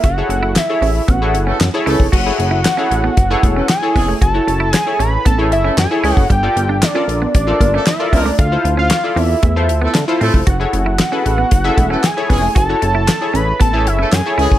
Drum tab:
CC |----------------|x---------------|----------------|----------------|
HH |x-x-x-o-x-x-x-o-|--x-x-x-x-x-x-o-|x-x-x-x-x-x-x-o-|x-x-x-x-x-x-x-o-|
CP |----x-------x---|----x-------x---|----x-------x---|----x-------x---|
SD |----o-------o---|----o-------o---|----o-------o---|----o-------o---|
BD |o-------o------o|o-------o-o---o-|o-------o------o|o-------o-o---o-|

CC |----------------|----------------|----------------|
HH |x-x-x-o-x-x-x-o-|x-x-x-x-x-x-x-o-|x-x-x-x-x-x-x-o-|
CP |----x-------x---|----x-------x---|----x-------x---|
SD |----o-------o---|----o-------o---|----o-------o---|
BD |o-------o------o|o-------o-o---o-|o-------o------o|